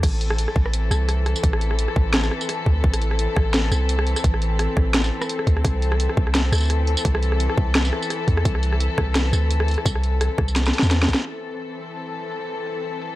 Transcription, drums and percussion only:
0.03 kick, cross-stick, closed hi-hat, crash
0.21 closed hi-hat
0.30 cross-stick
0.38 closed hi-hat
0.48 cross-stick
0.56 kick
0.66 cross-stick
0.73 closed hi-hat
0.91 cross-stick, tambourine
1.09 cross-stick, closed hi-hat
1.26 cross-stick, closed hi-hat
1.36 tambourine
1.44 kick, closed hi-hat
1.53 cross-stick
1.61 closed hi-hat
1.71 cross-stick
1.79 closed hi-hat
1.88 cross-stick
1.96 kick
2.14 cross-stick, snare, closed hi-hat
2.17 cross-stick
2.20 cross-stick
2.23 cross-stick, tambourine
2.26 cross-stick
2.29 cross-stick
2.31 cross-stick
2.41 tambourine
2.49 cross-stick, closed hi-hat
2.66 kick
2.84 kick
2.94 cross-stick, closed hi-hat
3.02 closed hi-hat
3.11 cross-stick
3.19 closed hi-hat
3.36 kick, cross-stick
3.54 cross-stick, snare, closed hi-hat
3.72 cross-stick, tambourine
3.89 closed hi-hat
3.99 cross-stick
4.07 closed hi-hat
4.16 cross-stick, tambourine
4.24 kick, closed hi-hat
4.34 cross-stick
4.42 closed hi-hat
4.59 cross-stick, closed hi-hat
4.77 kick, cross-stick
4.94 cross-stick, snare, closed hi-hat
5.04 tambourine
5.22 cross-stick, tambourine
5.29 closed hi-hat
5.39 cross-stick
5.47 kick, closed hi-hat
5.57 cross-stick
5.65 kick, cross-stick, closed hi-hat
5.82 closed hi-hat
5.92 cross-stick
6.00 closed hi-hat
6.09 cross-stick
6.17 kick
6.27 cross-stick
6.35 snare, closed hi-hat
6.52 cross-stick, tambourine
6.55 tambourine
6.58 tambourine
6.61 tambourine
6.63 tambourine
6.65 tambourine
6.68 cross-stick, closed hi-hat, tambourine
6.87 closed hi-hat
6.97 tambourine
7.05 kick, closed hi-hat
7.15 cross-stick
7.23 closed hi-hat
7.32 cross-stick
7.40 closed hi-hat
7.50 cross-stick
7.58 kick
7.75 cross-stick, snare, closed hi-hat
7.85 tambourine
7.93 cross-stick
8.02 tambourine
8.10 cross-stick, closed hi-hat
8.28 kick, closed hi-hat
8.37 cross-stick
8.45 kick, closed hi-hat
8.55 cross-stick
8.63 closed hi-hat
8.73 cross-stick
8.80 closed hi-hat
8.98 kick, cross-stick
9.15 cross-stick, snare, closed hi-hat
9.33 cross-stick, tambourine
9.51 closed hi-hat
9.60 cross-stick
9.68 closed hi-hat
9.71 closed hi-hat
9.74 cross-stick, closed hi-hat
9.86 kick, closed hi-hat, tambourine
9.95 cross-stick
10.03 closed hi-hat
10.21 cross-stick, closed hi-hat
10.38 kick, cross-stick
10.48 tambourine
10.56 snare, closed hi-hat
10.66 snare, tambourine
10.73 closed hi-hat
10.79 snare, tambourine
10.91 snare, closed hi-hat
11.03 snare
11.08 kick, closed hi-hat
11.14 snare
11.26 closed hi-hat
11.44 closed hi-hat
11.61 closed hi-hat
11.96 closed hi-hat
12.31 closed hi-hat
12.49 closed hi-hat
12.66 closed hi-hat
12.84 closed hi-hat
13.02 closed hi-hat

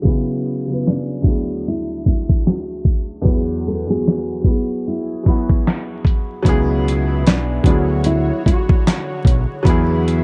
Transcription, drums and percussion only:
0.05 kick, closed hi-hat
0.48 closed hi-hat
0.87 snare, clap, closed hi-hat
1.24 kick, closed hi-hat
1.64 closed hi-hat
2.06 kick, closed hi-hat
2.29 kick
2.47 snare, clap, closed hi-hat
2.85 kick, closed hi-hat
3.25 kick, closed hi-hat
3.68 closed hi-hat
4.07 snare, clap, closed hi-hat
4.44 kick, closed hi-hat
4.84 closed hi-hat
5.26 kick, snare, closed hi-hat
5.49 kick
5.67 snare, clap, closed hi-hat
6.05 kick, closed hi-hat
6.45 kick, closed hi-hat
6.88 closed hi-hat
7.27 snare, clap, closed hi-hat
7.64 kick, closed hi-hat
8.04 closed hi-hat
8.46 kick, closed hi-hat
8.69 kick
8.87 snare, clap, closed hi-hat
9.25 kick, closed hi-hat
9.65 kick, closed hi-hat
10.08 closed hi-hat

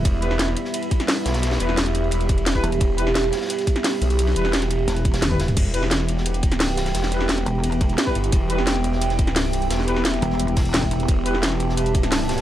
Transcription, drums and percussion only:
0.05 kick, closed hi-hat, ride
0.22 closed hi-hat, ride
0.31 snare
0.39 snare, closed hi-hat, ride
0.48 snare
0.57 closed hi-hat, ride
0.65 snare
0.74 closed hi-hat, ride
0.83 closed hi-hat
0.91 kick, closed hi-hat, ride
1.00 snare, closed hi-hat
1.08 snare, closed hi-hat, open hi-hat
1.26 snare, closed hi-hat, ride
1.34 snare, closed hi-hat, ride
1.43 snare, closed hi-hat, ride
1.51 snare, ride
1.59 closed hi-hat, ride
1.69 snare
1.77 snare, closed hi-hat, ride
1.86 snare, closed hi-hat
1.95 closed hi-hat, ride
2.04 ride
2.11 closed hi-hat, ride
2.21 closed hi-hat
2.29 kick, closed hi-hat, ride
2.38 closed hi-hat, ride
2.46 snare, closed hi-hat, ride
2.55 kick, ride
2.63 closed hi-hat, ride
2.72 closed hi-hat, ride
2.80 kick, closed hi-hat, ride
2.98 closed hi-hat, ride
3.07 snare
3.15 snare, closed hi-hat, ride
3.24 snare
3.32 snare, closed hi-hat, ride
3.37 snare, ride
3.41 snare, ride
3.46 snare, ride
3.50 closed hi-hat, ride
3.59 snare, closed hi-hat
3.67 kick, closed hi-hat, ride
3.76 snare, closed hi-hat
3.84 snare, closed hi-hat, open hi-hat
4.01 closed hi-hat, ride
4.10 closed hi-hat
4.19 closed hi-hat, ride
4.27 snare, ride
4.36 closed hi-hat
4.45 snare, ride
4.53 snare, closed hi-hat, ride
4.62 snare, closed hi-hat
4.70 closed hi-hat, ride
4.79 ride
4.88 snare, closed hi-hat, ride
4.96 closed hi-hat
5.05 kick, closed hi-hat, ride
5.14 snare, closed hi-hat, ride
5.22 snare, closed hi-hat, high tom
5.31 kick, high tom, ride
5.40 snare, closed hi-hat, ride
5.48 closed hi-hat, mid tom
5.57 kick, closed hi-hat, crash, ride
5.74 closed hi-hat, ride
5.83 snare
5.91 snare, closed hi-hat, ride
6.00 snare
6.09 closed hi-hat, ride
6.17 snare
6.25 closed hi-hat, ride
6.34 closed hi-hat
6.43 kick, closed hi-hat, ride
6.52 snare, closed hi-hat
6.60 snare, closed hi-hat, open hi-hat
6.77 snare, closed hi-hat, ride
6.86 snare, closed hi-hat, ride
6.94 snare, closed hi-hat, ride
7.03 snare, ride
7.12 closed hi-hat, ride
7.21 snare
7.29 snare, closed hi-hat, ride
7.38 snare, closed hi-hat
7.46 closed hi-hat, ride
7.55 ride
7.64 closed hi-hat, ride
7.72 closed hi-hat
7.81 kick, closed hi-hat, ride
7.89 closed hi-hat, ride
7.98 snare, closed hi-hat, ride
8.07 kick, ride
8.15 closed hi-hat, ride
8.24 closed hi-hat, ride
8.32 kick, closed hi-hat, ride
8.50 closed hi-hat, ride
8.58 snare
8.67 snare, closed hi-hat, ride
8.76 snare
8.84 closed hi-hat, ride
8.93 snare
9.02 closed hi-hat, ride
9.09 snare, closed hi-hat
9.19 kick, closed hi-hat, ride
9.27 snare, closed hi-hat
9.36 snare, closed hi-hat, open hi-hat
9.53 closed hi-hat, ride
9.62 closed hi-hat
9.70 snare, closed hi-hat, ride
9.79 snare
9.88 closed hi-hat, ride
9.96 snare
10.05 snare, closed hi-hat, ride
10.14 snare, closed hi-hat
10.22 closed hi-hat, ride
10.30 snare
10.40 closed hi-hat, ride
10.48 closed hi-hat
10.56 kick, snare, closed hi-hat, open hi-hat
10.65 closed hi-hat
10.73 snare, closed hi-hat, ride
10.82 kick, ride
10.91 closed hi-hat, ride
11.00 closed hi-hat, ride
11.08 kick, closed hi-hat, ride
11.26 closed hi-hat, ride
11.34 snare
11.42 snare, closed hi-hat, ride
11.52 snare
11.60 closed hi-hat, ride
11.69 snare
11.77 closed hi-hat, ride
11.86 closed hi-hat
11.95 kick, closed hi-hat, ride
12.03 snare, closed hi-hat
12.12 snare, closed hi-hat, open hi-hat
12.29 snare, closed hi-hat, ride
12.37 snare, closed hi-hat, ride

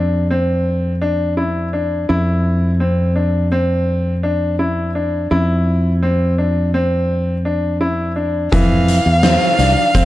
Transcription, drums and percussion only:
8.53 kick, closed hi-hat
8.88 closed hi-hat
9.23 snare, closed hi-hat
9.59 snare, closed hi-hat
9.95 kick, snare, closed hi-hat

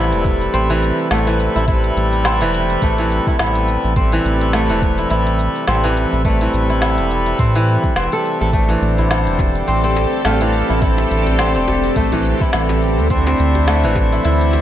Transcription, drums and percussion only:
0.13 closed hi-hat
0.25 kick, shaker
0.41 closed hi-hat, shaker
0.54 closed hi-hat, shaker
0.70 closed hi-hat, shaker
0.83 shaker
0.99 shaker
1.11 snare, closed hi-hat, shaker
1.27 closed hi-hat
1.40 shaker
1.56 shaker
1.68 kick, closed hi-hat, shaker
1.84 closed hi-hat
1.97 shaker
2.13 closed hi-hat, shaker
2.25 snare, closed hi-hat, shaker
2.41 closed hi-hat
2.54 shaker
2.70 closed hi-hat, shaker
2.82 kick, closed hi-hat, shaker
2.98 closed hi-hat, shaker
3.11 shaker
3.27 kick, shaker
3.39 snare, closed hi-hat, shaker
3.55 closed hi-hat
3.68 shaker
3.84 shaker
3.96 kick, closed hi-hat, shaker
4.12 closed hi-hat
4.25 shaker
4.41 closed hi-hat, shaker
4.53 snare, closed hi-hat, shaker
4.70 closed hi-hat
4.82 kick, shaker
4.98 closed hi-hat, shaker
5.10 closed hi-hat, shaker
5.27 closed hi-hat, shaker
5.39 shaker
5.56 shaker
5.67 snare, closed hi-hat, shaker
5.84 closed hi-hat
5.96 shaker
6.13 shaker
6.25 kick, closed hi-hat, shaker
6.41 closed hi-hat, shaker
6.54 shaker
6.70 closed hi-hat, shaker
6.82 snare, closed hi-hat, shaker
6.98 closed hi-hat
7.11 shaker
7.26 closed hi-hat, shaker
7.39 kick, closed hi-hat, shaker
7.55 closed hi-hat, shaker
7.68 shaker
7.84 kick, shaker
7.96 snare, closed hi-hat, shaker
8.12 closed hi-hat
8.25 shaker
8.41 shaker
8.53 kick, closed hi-hat, shaker
8.69 closed hi-hat, djembe slap
8.82 shaker
8.98 closed hi-hat, djembe tone, shaker
9.11 snare, closed hi-hat, shaker
9.27 closed hi-hat
9.39 kick, djembe slap, djembe tone, shaker
9.55 closed hi-hat, shaker
9.68 closed hi-hat, shaker
9.84 closed hi-hat, shaker
9.96 djembe slap, shaker
10.13 shaker
10.25 snare, closed hi-hat, shaker
10.41 closed hi-hat
10.54 shaker
10.70 shaker
10.82 kick, closed hi-hat, shaker
10.98 closed hi-hat, djembe slap
11.11 shaker
11.26 closed hi-hat, djembe tone, shaker
11.39 snare, closed hi-hat, shaker
11.55 closed hi-hat
11.68 djembe slap, djembe tone, shaker
11.84 closed hi-hat, shaker
11.96 kick, closed hi-hat, shaker
12.12 closed hi-hat, djembe bass, shaker
12.25 shaker
12.41 kick, shaker
12.53 snare, closed hi-hat, shaker
12.69 closed hi-hat, djembe slap
12.82 shaker
12.98 shaker
13.10 kick, closed hi-hat, shaker
13.27 closed hi-hat, djembe slap
13.39 shaker
13.55 closed hi-hat, djembe tone, shaker
13.68 snare, closed hi-hat, shaker
13.84 closed hi-hat
13.95 kick, djembe slap, djembe tone, shaker
14.12 closed hi-hat, shaker
14.25 closed hi-hat, shaker
14.41 closed hi-hat, shaker
14.53 djembe slap, shaker

